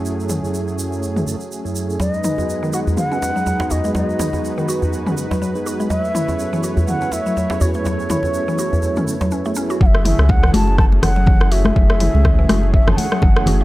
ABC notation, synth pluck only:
X:1
M:4/4
L:1/16
Q:"Swing 16ths" 1/4=123
K:F#dor
V:1 name="Synth pluck"
z16 | F, z D z2 D, F z2 C z F, F, z F G, | F, z D z2 D, F z2 C z F, F, z F G, | F, z E z2 E, F z2 C z F, F, z F A, |
F, z E z2 E, F z2 C z F, C A, C F | F, z E z2 E, F z2 C z F, F, z F A, | F, z E z2 E, F z2 C z F, F, z F A, |]